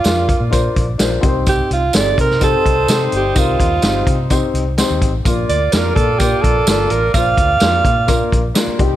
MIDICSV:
0, 0, Header, 1, 7, 480
1, 0, Start_track
1, 0, Key_signature, -2, "major"
1, 0, Tempo, 472441
1, 1496, Time_signature, 4, 2, 24, 8
1, 9103, End_track
2, 0, Start_track
2, 0, Title_t, "Alto saxophone"
2, 0, Program_c, 0, 65
2, 0, Note_on_c, 0, 65, 82
2, 534, Note_off_c, 0, 65, 0
2, 1508, Note_on_c, 0, 67, 93
2, 1725, Note_off_c, 0, 67, 0
2, 1756, Note_on_c, 0, 65, 87
2, 1995, Note_on_c, 0, 74, 97
2, 2010, Note_off_c, 0, 65, 0
2, 2225, Note_off_c, 0, 74, 0
2, 2239, Note_on_c, 0, 70, 88
2, 2452, Note_off_c, 0, 70, 0
2, 2472, Note_on_c, 0, 69, 89
2, 3144, Note_off_c, 0, 69, 0
2, 3210, Note_on_c, 0, 67, 76
2, 3436, Note_on_c, 0, 65, 79
2, 3452, Note_off_c, 0, 67, 0
2, 4386, Note_off_c, 0, 65, 0
2, 5579, Note_on_c, 0, 74, 76
2, 5816, Note_on_c, 0, 70, 81
2, 5831, Note_off_c, 0, 74, 0
2, 6040, Note_off_c, 0, 70, 0
2, 6046, Note_on_c, 0, 69, 79
2, 6285, Note_on_c, 0, 67, 76
2, 6300, Note_off_c, 0, 69, 0
2, 6520, Note_on_c, 0, 69, 86
2, 6536, Note_off_c, 0, 67, 0
2, 7018, Note_on_c, 0, 70, 79
2, 7033, Note_off_c, 0, 69, 0
2, 7245, Note_off_c, 0, 70, 0
2, 7251, Note_on_c, 0, 77, 98
2, 8653, Note_off_c, 0, 77, 0
2, 9103, End_track
3, 0, Start_track
3, 0, Title_t, "Horn section"
3, 0, Program_c, 1, 61
3, 0, Note_on_c, 1, 58, 76
3, 0, Note_on_c, 1, 65, 75
3, 0, Note_on_c, 1, 74, 83
3, 972, Note_off_c, 1, 65, 0
3, 972, Note_off_c, 1, 74, 0
3, 973, Note_off_c, 1, 58, 0
3, 2211, Note_on_c, 1, 63, 79
3, 2212, Note_on_c, 1, 72, 86
3, 2217, Note_on_c, 1, 55, 82
3, 4813, Note_off_c, 1, 63, 0
3, 4814, Note_off_c, 1, 72, 0
3, 4816, Note_off_c, 1, 55, 0
3, 5344, Note_on_c, 1, 65, 77
3, 5344, Note_on_c, 1, 74, 87
3, 5347, Note_on_c, 1, 58, 79
3, 8660, Note_off_c, 1, 65, 0
3, 8660, Note_off_c, 1, 74, 0
3, 8661, Note_off_c, 1, 58, 0
3, 8924, Note_on_c, 1, 60, 74
3, 8927, Note_on_c, 1, 75, 85
3, 8930, Note_on_c, 1, 67, 81
3, 9103, Note_off_c, 1, 60, 0
3, 9103, Note_off_c, 1, 67, 0
3, 9103, Note_off_c, 1, 75, 0
3, 9103, End_track
4, 0, Start_track
4, 0, Title_t, "Upright piano"
4, 0, Program_c, 2, 0
4, 40, Note_on_c, 2, 62, 67
4, 44, Note_on_c, 2, 65, 59
4, 54, Note_on_c, 2, 70, 64
4, 61, Note_on_c, 2, 74, 72
4, 365, Note_off_c, 2, 62, 0
4, 367, Note_off_c, 2, 65, 0
4, 372, Note_off_c, 2, 70, 0
4, 376, Note_off_c, 2, 74, 0
4, 509, Note_on_c, 2, 62, 81
4, 517, Note_on_c, 2, 65, 70
4, 522, Note_on_c, 2, 70, 75
4, 530, Note_on_c, 2, 72, 86
4, 840, Note_off_c, 2, 62, 0
4, 843, Note_off_c, 2, 65, 0
4, 846, Note_off_c, 2, 70, 0
4, 850, Note_off_c, 2, 72, 0
4, 995, Note_on_c, 2, 62, 79
4, 1006, Note_on_c, 2, 65, 78
4, 1008, Note_on_c, 2, 70, 72
4, 1018, Note_on_c, 2, 72, 86
4, 1230, Note_on_c, 2, 60, 83
4, 1233, Note_on_c, 2, 63, 70
4, 1234, Note_off_c, 2, 70, 0
4, 1246, Note_off_c, 2, 62, 0
4, 1246, Note_on_c, 2, 67, 72
4, 1249, Note_on_c, 2, 70, 72
4, 1251, Note_off_c, 2, 65, 0
4, 1257, Note_off_c, 2, 72, 0
4, 1303, Note_on_c, 2, 72, 83
4, 1310, Note_off_c, 2, 70, 0
4, 1819, Note_off_c, 2, 60, 0
4, 1820, Note_off_c, 2, 63, 0
4, 1827, Note_off_c, 2, 67, 0
4, 1856, Note_off_c, 2, 72, 0
4, 1963, Note_on_c, 2, 60, 64
4, 1967, Note_on_c, 2, 63, 62
4, 1974, Note_on_c, 2, 67, 61
4, 1976, Note_on_c, 2, 69, 73
4, 2287, Note_off_c, 2, 60, 0
4, 2289, Note_off_c, 2, 63, 0
4, 2293, Note_off_c, 2, 67, 0
4, 2293, Note_off_c, 2, 69, 0
4, 2440, Note_on_c, 2, 60, 69
4, 2444, Note_on_c, 2, 63, 61
4, 2453, Note_on_c, 2, 67, 66
4, 2459, Note_on_c, 2, 72, 74
4, 2766, Note_off_c, 2, 60, 0
4, 2767, Note_off_c, 2, 63, 0
4, 2772, Note_off_c, 2, 67, 0
4, 2775, Note_off_c, 2, 72, 0
4, 2930, Note_on_c, 2, 60, 72
4, 2933, Note_on_c, 2, 63, 61
4, 2939, Note_on_c, 2, 67, 64
4, 2946, Note_on_c, 2, 69, 76
4, 3251, Note_off_c, 2, 60, 0
4, 3252, Note_off_c, 2, 63, 0
4, 3255, Note_off_c, 2, 67, 0
4, 3258, Note_off_c, 2, 69, 0
4, 3401, Note_on_c, 2, 60, 60
4, 3404, Note_on_c, 2, 63, 54
4, 3409, Note_on_c, 2, 67, 54
4, 3422, Note_on_c, 2, 70, 69
4, 3726, Note_off_c, 2, 60, 0
4, 3728, Note_off_c, 2, 63, 0
4, 3730, Note_off_c, 2, 67, 0
4, 3736, Note_off_c, 2, 70, 0
4, 3881, Note_on_c, 2, 60, 64
4, 3888, Note_on_c, 2, 63, 59
4, 3894, Note_on_c, 2, 67, 61
4, 3900, Note_on_c, 2, 72, 69
4, 4206, Note_off_c, 2, 60, 0
4, 4210, Note_off_c, 2, 63, 0
4, 4213, Note_off_c, 2, 67, 0
4, 4215, Note_off_c, 2, 72, 0
4, 4373, Note_on_c, 2, 60, 77
4, 4376, Note_on_c, 2, 63, 73
4, 4380, Note_on_c, 2, 67, 70
4, 4392, Note_on_c, 2, 72, 84
4, 4692, Note_off_c, 2, 60, 0
4, 4693, Note_off_c, 2, 63, 0
4, 4695, Note_off_c, 2, 67, 0
4, 4702, Note_off_c, 2, 72, 0
4, 4853, Note_on_c, 2, 60, 82
4, 4858, Note_on_c, 2, 63, 73
4, 4870, Note_on_c, 2, 67, 72
4, 4871, Note_on_c, 2, 72, 91
4, 5172, Note_off_c, 2, 60, 0
4, 5174, Note_off_c, 2, 63, 0
4, 5180, Note_off_c, 2, 67, 0
4, 5181, Note_off_c, 2, 72, 0
4, 5332, Note_on_c, 2, 58, 73
4, 5339, Note_on_c, 2, 62, 62
4, 5348, Note_on_c, 2, 65, 71
4, 5351, Note_on_c, 2, 70, 80
4, 5651, Note_off_c, 2, 58, 0
4, 5655, Note_off_c, 2, 62, 0
4, 5660, Note_off_c, 2, 65, 0
4, 5661, Note_off_c, 2, 70, 0
4, 5824, Note_on_c, 2, 58, 68
4, 5829, Note_on_c, 2, 62, 62
4, 5836, Note_on_c, 2, 65, 59
4, 5842, Note_on_c, 2, 70, 77
4, 6138, Note_off_c, 2, 58, 0
4, 6140, Note_off_c, 2, 62, 0
4, 6143, Note_off_c, 2, 65, 0
4, 6146, Note_off_c, 2, 70, 0
4, 6296, Note_on_c, 2, 58, 65
4, 6310, Note_on_c, 2, 62, 59
4, 6313, Note_on_c, 2, 65, 56
4, 6321, Note_on_c, 2, 70, 73
4, 6614, Note_off_c, 2, 58, 0
4, 6620, Note_off_c, 2, 62, 0
4, 6622, Note_off_c, 2, 65, 0
4, 6626, Note_off_c, 2, 70, 0
4, 6775, Note_on_c, 2, 58, 66
4, 6780, Note_on_c, 2, 62, 62
4, 6782, Note_on_c, 2, 65, 61
4, 6792, Note_on_c, 2, 70, 77
4, 7093, Note_off_c, 2, 58, 0
4, 7095, Note_off_c, 2, 62, 0
4, 7096, Note_off_c, 2, 65, 0
4, 7101, Note_off_c, 2, 70, 0
4, 7256, Note_on_c, 2, 58, 59
4, 7264, Note_on_c, 2, 62, 53
4, 7272, Note_on_c, 2, 65, 54
4, 7274, Note_on_c, 2, 72, 65
4, 7573, Note_off_c, 2, 58, 0
4, 7578, Note_off_c, 2, 62, 0
4, 7581, Note_off_c, 2, 65, 0
4, 7582, Note_off_c, 2, 72, 0
4, 7728, Note_on_c, 2, 58, 66
4, 7736, Note_on_c, 2, 62, 64
4, 7747, Note_on_c, 2, 65, 61
4, 7750, Note_on_c, 2, 70, 75
4, 8049, Note_off_c, 2, 58, 0
4, 8054, Note_off_c, 2, 62, 0
4, 8059, Note_off_c, 2, 65, 0
4, 8060, Note_off_c, 2, 70, 0
4, 8201, Note_on_c, 2, 58, 82
4, 8206, Note_on_c, 2, 62, 70
4, 8212, Note_on_c, 2, 65, 74
4, 8220, Note_on_c, 2, 70, 87
4, 8526, Note_off_c, 2, 58, 0
4, 8529, Note_off_c, 2, 62, 0
4, 8531, Note_off_c, 2, 65, 0
4, 8535, Note_off_c, 2, 70, 0
4, 8682, Note_on_c, 2, 58, 87
4, 8686, Note_on_c, 2, 62, 75
4, 8696, Note_on_c, 2, 65, 79
4, 8702, Note_on_c, 2, 70, 91
4, 8928, Note_on_c, 2, 55, 74
4, 8929, Note_on_c, 2, 60, 67
4, 8930, Note_off_c, 2, 58, 0
4, 8931, Note_off_c, 2, 62, 0
4, 8937, Note_off_c, 2, 65, 0
4, 8939, Note_off_c, 2, 70, 0
4, 8940, Note_on_c, 2, 63, 66
4, 8948, Note_on_c, 2, 67, 82
4, 9103, Note_off_c, 2, 55, 0
4, 9103, Note_off_c, 2, 60, 0
4, 9103, Note_off_c, 2, 63, 0
4, 9103, Note_off_c, 2, 67, 0
4, 9103, End_track
5, 0, Start_track
5, 0, Title_t, "Fingered electric bass"
5, 0, Program_c, 3, 33
5, 51, Note_on_c, 3, 41, 72
5, 330, Note_off_c, 3, 41, 0
5, 409, Note_on_c, 3, 46, 73
5, 689, Note_off_c, 3, 46, 0
5, 779, Note_on_c, 3, 34, 79
5, 963, Note_off_c, 3, 34, 0
5, 1014, Note_on_c, 3, 34, 85
5, 1200, Note_off_c, 3, 34, 0
5, 1254, Note_on_c, 3, 36, 86
5, 1625, Note_off_c, 3, 36, 0
5, 1733, Note_on_c, 3, 36, 80
5, 1919, Note_off_c, 3, 36, 0
5, 1976, Note_on_c, 3, 31, 80
5, 2161, Note_off_c, 3, 31, 0
5, 2214, Note_on_c, 3, 48, 86
5, 2584, Note_off_c, 3, 48, 0
5, 2702, Note_on_c, 3, 36, 80
5, 2885, Note_off_c, 3, 36, 0
5, 2930, Note_on_c, 3, 48, 84
5, 3117, Note_off_c, 3, 48, 0
5, 3176, Note_on_c, 3, 31, 69
5, 3361, Note_off_c, 3, 31, 0
5, 3414, Note_on_c, 3, 36, 96
5, 3600, Note_off_c, 3, 36, 0
5, 3657, Note_on_c, 3, 39, 73
5, 3842, Note_off_c, 3, 39, 0
5, 3892, Note_on_c, 3, 31, 78
5, 4079, Note_off_c, 3, 31, 0
5, 4132, Note_on_c, 3, 48, 79
5, 4504, Note_off_c, 3, 48, 0
5, 4611, Note_on_c, 3, 36, 74
5, 4890, Note_off_c, 3, 36, 0
5, 4982, Note_on_c, 3, 39, 89
5, 5072, Note_off_c, 3, 39, 0
5, 5099, Note_on_c, 3, 33, 68
5, 5283, Note_off_c, 3, 33, 0
5, 5339, Note_on_c, 3, 34, 96
5, 5523, Note_off_c, 3, 34, 0
5, 5579, Note_on_c, 3, 38, 75
5, 5763, Note_off_c, 3, 38, 0
5, 5823, Note_on_c, 3, 41, 82
5, 6005, Note_off_c, 3, 41, 0
5, 6059, Note_on_c, 3, 46, 85
5, 6427, Note_off_c, 3, 46, 0
5, 6540, Note_on_c, 3, 34, 75
5, 6723, Note_off_c, 3, 34, 0
5, 6781, Note_on_c, 3, 31, 81
5, 6964, Note_off_c, 3, 31, 0
5, 7019, Note_on_c, 3, 33, 68
5, 7203, Note_off_c, 3, 33, 0
5, 7259, Note_on_c, 3, 34, 95
5, 7443, Note_off_c, 3, 34, 0
5, 7494, Note_on_c, 3, 38, 82
5, 7680, Note_off_c, 3, 38, 0
5, 7736, Note_on_c, 3, 41, 82
5, 7921, Note_off_c, 3, 41, 0
5, 7970, Note_on_c, 3, 46, 82
5, 8342, Note_off_c, 3, 46, 0
5, 8457, Note_on_c, 3, 34, 84
5, 8642, Note_off_c, 3, 34, 0
5, 8937, Note_on_c, 3, 36, 86
5, 9103, Note_off_c, 3, 36, 0
5, 9103, End_track
6, 0, Start_track
6, 0, Title_t, "Muted fingered electric bass strokes"
6, 8810, Note_on_c, 9, 29, 45
6, 8912, Note_off_c, 9, 29, 0
6, 9103, End_track
7, 0, Start_track
7, 0, Title_t, "Drums"
7, 41, Note_on_c, 9, 42, 70
7, 48, Note_on_c, 9, 54, 78
7, 54, Note_on_c, 9, 38, 100
7, 143, Note_off_c, 9, 42, 0
7, 149, Note_off_c, 9, 54, 0
7, 155, Note_off_c, 9, 38, 0
7, 292, Note_on_c, 9, 36, 83
7, 295, Note_on_c, 9, 42, 64
7, 394, Note_off_c, 9, 36, 0
7, 397, Note_off_c, 9, 42, 0
7, 532, Note_on_c, 9, 42, 71
7, 535, Note_on_c, 9, 36, 76
7, 536, Note_on_c, 9, 54, 69
7, 634, Note_off_c, 9, 42, 0
7, 637, Note_off_c, 9, 36, 0
7, 638, Note_off_c, 9, 54, 0
7, 774, Note_on_c, 9, 42, 61
7, 776, Note_on_c, 9, 36, 71
7, 876, Note_off_c, 9, 42, 0
7, 878, Note_off_c, 9, 36, 0
7, 1007, Note_on_c, 9, 42, 84
7, 1011, Note_on_c, 9, 38, 100
7, 1014, Note_on_c, 9, 54, 100
7, 1109, Note_off_c, 9, 42, 0
7, 1113, Note_off_c, 9, 38, 0
7, 1116, Note_off_c, 9, 54, 0
7, 1248, Note_on_c, 9, 42, 68
7, 1253, Note_on_c, 9, 36, 83
7, 1350, Note_off_c, 9, 42, 0
7, 1354, Note_off_c, 9, 36, 0
7, 1489, Note_on_c, 9, 42, 80
7, 1489, Note_on_c, 9, 54, 67
7, 1493, Note_on_c, 9, 36, 93
7, 1590, Note_off_c, 9, 54, 0
7, 1591, Note_off_c, 9, 42, 0
7, 1594, Note_off_c, 9, 36, 0
7, 1736, Note_on_c, 9, 42, 64
7, 1837, Note_off_c, 9, 42, 0
7, 1963, Note_on_c, 9, 54, 76
7, 1965, Note_on_c, 9, 42, 76
7, 1977, Note_on_c, 9, 38, 96
7, 2064, Note_off_c, 9, 54, 0
7, 2066, Note_off_c, 9, 42, 0
7, 2079, Note_off_c, 9, 38, 0
7, 2214, Note_on_c, 9, 36, 81
7, 2221, Note_on_c, 9, 42, 67
7, 2316, Note_off_c, 9, 36, 0
7, 2323, Note_off_c, 9, 42, 0
7, 2343, Note_on_c, 9, 38, 34
7, 2444, Note_off_c, 9, 38, 0
7, 2448, Note_on_c, 9, 54, 69
7, 2449, Note_on_c, 9, 42, 77
7, 2454, Note_on_c, 9, 36, 73
7, 2549, Note_off_c, 9, 54, 0
7, 2551, Note_off_c, 9, 42, 0
7, 2556, Note_off_c, 9, 36, 0
7, 2699, Note_on_c, 9, 36, 66
7, 2702, Note_on_c, 9, 42, 58
7, 2800, Note_off_c, 9, 36, 0
7, 2804, Note_off_c, 9, 42, 0
7, 2930, Note_on_c, 9, 54, 100
7, 2936, Note_on_c, 9, 42, 91
7, 2941, Note_on_c, 9, 38, 96
7, 3031, Note_off_c, 9, 54, 0
7, 3038, Note_off_c, 9, 42, 0
7, 3042, Note_off_c, 9, 38, 0
7, 3171, Note_on_c, 9, 42, 65
7, 3273, Note_off_c, 9, 42, 0
7, 3410, Note_on_c, 9, 54, 68
7, 3411, Note_on_c, 9, 42, 78
7, 3413, Note_on_c, 9, 36, 88
7, 3511, Note_off_c, 9, 54, 0
7, 3512, Note_off_c, 9, 42, 0
7, 3515, Note_off_c, 9, 36, 0
7, 3654, Note_on_c, 9, 36, 73
7, 3659, Note_on_c, 9, 42, 64
7, 3756, Note_off_c, 9, 36, 0
7, 3760, Note_off_c, 9, 42, 0
7, 3882, Note_on_c, 9, 42, 71
7, 3886, Note_on_c, 9, 54, 72
7, 3895, Note_on_c, 9, 38, 101
7, 3984, Note_off_c, 9, 42, 0
7, 3987, Note_off_c, 9, 54, 0
7, 3996, Note_off_c, 9, 38, 0
7, 4133, Note_on_c, 9, 36, 78
7, 4134, Note_on_c, 9, 42, 64
7, 4234, Note_off_c, 9, 36, 0
7, 4236, Note_off_c, 9, 42, 0
7, 4370, Note_on_c, 9, 42, 75
7, 4375, Note_on_c, 9, 36, 72
7, 4376, Note_on_c, 9, 54, 67
7, 4471, Note_off_c, 9, 42, 0
7, 4477, Note_off_c, 9, 36, 0
7, 4478, Note_off_c, 9, 54, 0
7, 4619, Note_on_c, 9, 42, 58
7, 4721, Note_off_c, 9, 42, 0
7, 4852, Note_on_c, 9, 42, 78
7, 4857, Note_on_c, 9, 38, 94
7, 4860, Note_on_c, 9, 54, 96
7, 4954, Note_off_c, 9, 42, 0
7, 4958, Note_off_c, 9, 38, 0
7, 4962, Note_off_c, 9, 54, 0
7, 5097, Note_on_c, 9, 36, 80
7, 5097, Note_on_c, 9, 42, 67
7, 5198, Note_off_c, 9, 36, 0
7, 5198, Note_off_c, 9, 42, 0
7, 5338, Note_on_c, 9, 36, 95
7, 5341, Note_on_c, 9, 54, 71
7, 5343, Note_on_c, 9, 42, 75
7, 5439, Note_off_c, 9, 36, 0
7, 5443, Note_off_c, 9, 54, 0
7, 5444, Note_off_c, 9, 42, 0
7, 5581, Note_on_c, 9, 42, 66
7, 5682, Note_off_c, 9, 42, 0
7, 5811, Note_on_c, 9, 42, 74
7, 5816, Note_on_c, 9, 54, 77
7, 5824, Note_on_c, 9, 38, 93
7, 5913, Note_off_c, 9, 42, 0
7, 5918, Note_off_c, 9, 54, 0
7, 5925, Note_off_c, 9, 38, 0
7, 6058, Note_on_c, 9, 36, 84
7, 6067, Note_on_c, 9, 42, 62
7, 6159, Note_off_c, 9, 36, 0
7, 6168, Note_off_c, 9, 42, 0
7, 6296, Note_on_c, 9, 54, 72
7, 6300, Note_on_c, 9, 36, 79
7, 6300, Note_on_c, 9, 42, 73
7, 6398, Note_off_c, 9, 54, 0
7, 6401, Note_off_c, 9, 42, 0
7, 6402, Note_off_c, 9, 36, 0
7, 6541, Note_on_c, 9, 36, 68
7, 6544, Note_on_c, 9, 42, 59
7, 6643, Note_off_c, 9, 36, 0
7, 6646, Note_off_c, 9, 42, 0
7, 6776, Note_on_c, 9, 54, 107
7, 6778, Note_on_c, 9, 42, 83
7, 6783, Note_on_c, 9, 38, 97
7, 6877, Note_off_c, 9, 54, 0
7, 6880, Note_off_c, 9, 42, 0
7, 6884, Note_off_c, 9, 38, 0
7, 7011, Note_on_c, 9, 42, 71
7, 7113, Note_off_c, 9, 42, 0
7, 7254, Note_on_c, 9, 54, 70
7, 7256, Note_on_c, 9, 36, 89
7, 7256, Note_on_c, 9, 42, 82
7, 7356, Note_off_c, 9, 54, 0
7, 7357, Note_off_c, 9, 36, 0
7, 7357, Note_off_c, 9, 42, 0
7, 7493, Note_on_c, 9, 36, 83
7, 7494, Note_on_c, 9, 42, 65
7, 7594, Note_off_c, 9, 36, 0
7, 7595, Note_off_c, 9, 42, 0
7, 7721, Note_on_c, 9, 42, 71
7, 7726, Note_on_c, 9, 54, 74
7, 7734, Note_on_c, 9, 38, 95
7, 7823, Note_off_c, 9, 42, 0
7, 7828, Note_off_c, 9, 54, 0
7, 7835, Note_off_c, 9, 38, 0
7, 7972, Note_on_c, 9, 36, 88
7, 7977, Note_on_c, 9, 42, 63
7, 8073, Note_off_c, 9, 36, 0
7, 8079, Note_off_c, 9, 42, 0
7, 8209, Note_on_c, 9, 54, 69
7, 8214, Note_on_c, 9, 36, 83
7, 8214, Note_on_c, 9, 42, 80
7, 8311, Note_off_c, 9, 54, 0
7, 8315, Note_off_c, 9, 42, 0
7, 8316, Note_off_c, 9, 36, 0
7, 8457, Note_on_c, 9, 36, 67
7, 8464, Note_on_c, 9, 42, 57
7, 8558, Note_off_c, 9, 36, 0
7, 8565, Note_off_c, 9, 42, 0
7, 8689, Note_on_c, 9, 42, 90
7, 8690, Note_on_c, 9, 54, 105
7, 8694, Note_on_c, 9, 38, 100
7, 8791, Note_off_c, 9, 42, 0
7, 8792, Note_off_c, 9, 54, 0
7, 8795, Note_off_c, 9, 38, 0
7, 8932, Note_on_c, 9, 42, 68
7, 8934, Note_on_c, 9, 36, 83
7, 9033, Note_off_c, 9, 42, 0
7, 9036, Note_off_c, 9, 36, 0
7, 9103, End_track
0, 0, End_of_file